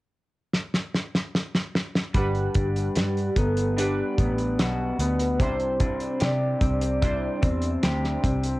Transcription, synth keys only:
2.14 G3 D4 B4 F#5
3.77 G3 D4 B4 F#5
5.40 G3 D4 E4 C5
7.02 G3 D4 E4 C5

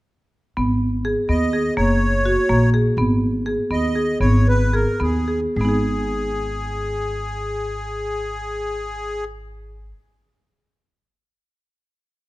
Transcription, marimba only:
0.57 B3
1.05 G#4
1.29 B3
1.53 G#4
1.77 A#3
2.26 F#4
2.49 A#3
2.74 G#4
2.98 B3
3.46 G#4
3.71 B3
3.95 G#4
4.21 B3
4.73 G#4
5.00 B3
5.28 G#4
5.57 G#3
5.61 B3
5.65 D#4 G#4

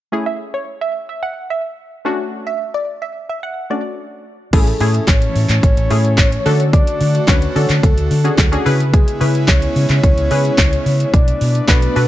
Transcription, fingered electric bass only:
4.53 A1
4.80 A2
5.08 A1
5.36 A2
5.49 A2
5.63 A1
5.77 A1
5.91 A2
6.18 A1
6.46 D3
7.01 D3
7.28 D2
7.56 D3
7.70 D3
7.83 D2
7.97 D2
8.11 D3
8.38 D2
8.66 C#3
9.21 C#3
9.48 C#2
9.76 C#3
9.90 C#3
10.04 C#2
10.17 C#2
10.31 C#3
10.58 C#2
10.86 C#3
11.14 B1
11.41 B2
11.68 B1
11.96 B2

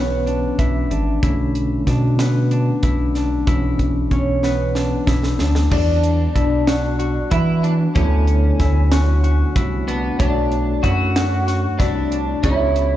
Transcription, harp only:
Already playing: B3 C#4 E4
0.26 D4
0.58 E4
0.90 D4
1.23 E4
1.87 D4
2.19 B3
2.51 D4
2.83 E4
3.15 D4
3.47 E4
4.11 C#4
4.43 B3
4.75 D4
5.07 E4
5.39 D4
5.71 D4
6.35 E4
6.67 F#4
6.99 F#4
7.31 E4
7.63 D4
7.95 D3
8.59 E4
8.92 F#4
9.23 F#4
9.56 E4
9.88 D4
10.20 D4
10.83 E4
11.16 F#4
11.47 F#4
11.79 E4
12.11 D4
12.44 C#4

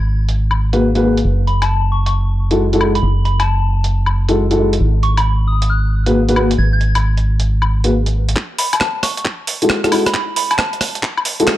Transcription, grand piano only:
0.73 A#3 F#4 G#4 B4
0.95 A#3 F#4 G#4 B4
1.03 A#3 B4
2.51 G#3 E4 F#4 A4
2.73 G#3 E4 F#4 A4
2.81 G#3 E4 F#4 A4
4.29 G#3 E4 F#4 A4
4.51 G#3 E4 F#4 A4
4.59 G#3 E4 F#4 A4
6.06 A#3 F#4 G#4 B4
6.29 A#3 F#4 G#4 B4
6.36 A#3 F#4 G#4 B4
7.84 A#3 F#4 G#4 B4
9.62 G#3 E4 F#4 A4
9.84 G#3 E4 F#4 A4
9.92 G#3 E4 F#4 A4
11.40 G#3 E4 F#4 A4

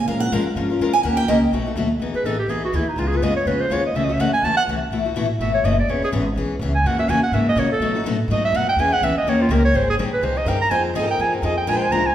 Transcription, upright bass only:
0.07 A#2
0.32 G#2
0.45 muted upright bass stroke
0.55 G2
0.79 F2
1.04 D#2
1.28 C#2
1.52 B1
1.76 D#2
2.00 E2
2.13 muted upright bass stroke
2.24 A1
2.48 B1
2.72 D#2
2.86 muted upright bass stroke
2.96 C#2
3.21 F#2
3.45 F2
3.70 D#2
3.94 C#2
4.18 F#2
4.42 E2
4.66 C2
4.91 B1
5.15 A1
5.39 G#1
5.64 F#1
6.12 G#1
6.36 B1
6.59 C#2
6.84 F#2
7.08 E2
7.31 G#2
7.56 A#2
7.80 B2
8.04 A2
8.28 G#2
8.52 F#2
8.76 E2
9.00 B1
9.14 muted upright bass stroke
9.24 D#2
9.49 C#2
9.73 G#1
9.98 A#1
10.21 C2
10.46 G2
10.69 F2
10.94 G#2
11.18 G2
11.42 F2
11.67 A#1
11.91 C2

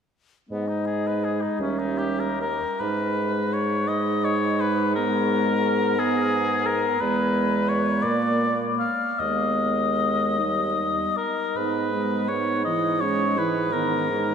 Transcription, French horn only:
0.50 G#3
1.60 G3
2.81 G#3
3.90 G#3
4.97 G#3
5.99 B3
7.01 B3
8.04 A#3
9.21 G#3
10.41 G3
11.57 B3
11.94 G#3
12.29 B3
12.66 E3
13.03 G#3
13.38 E3
13.74 D#3
14.11 G#3

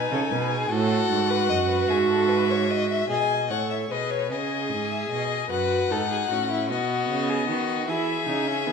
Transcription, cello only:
0.11 C#3
0.31 B2
0.70 A2
1.09 G#2
1.48 F#2
1.88 G#2
3.09 B2
3.49 A2
3.90 B2
4.30 C#3
4.70 G#2
5.10 B2
5.50 F#2
5.90 G#2
6.30 A2
6.70 B2
7.09 C#3
7.48 D#3
7.87 E3
8.27 C#3
8.66 D#3

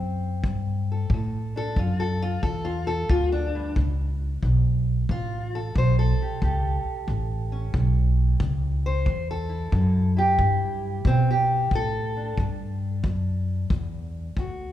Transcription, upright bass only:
Already playing: F#2
0.43 G2
1.10 A2
1.76 F#2
2.43 E2
3.09 D2
3.76 C#2
4.43 B1
5.09 A1
5.75 B1
6.19 muted upright bass stroke
6.42 C#2
6.85 muted upright bass stroke
7.07 A1
7.74 B1
8.40 C#2
9.06 E2
9.72 F#2
10.38 G2
11.05 B2
11.71 A2
12.38 G2
13.03 F#2
13.70 E2
14.36 D2

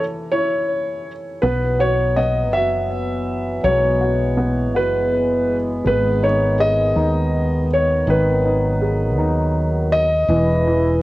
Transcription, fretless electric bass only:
1.43 B1
2.53 F#1
3.64 B1
4.75 F#1
5.86 G#1
6.96 D#2
8.07 G#1
9.17 D#2
10.28 E1

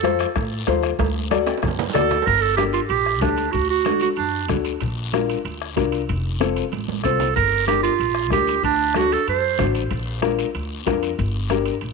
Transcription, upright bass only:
Already playing: F2
0.36 A2
0.67 D#2
0.99 D2
1.63 F#2
1.95 D2
2.27 G1
2.90 A#1
3.22 D2
3.54 D2
4.17 F#2
4.50 D2
4.81 A#1
5.45 D2
5.77 C2
6.09 F1
6.72 A1
7.04 C2
7.36 G1
8.00 A#1
8.31 D2
8.63 D2
9.27 F#2
9.59 A1
9.91 A#1
10.55 D2
10.87 F2
11.19 G1
11.82 A#1

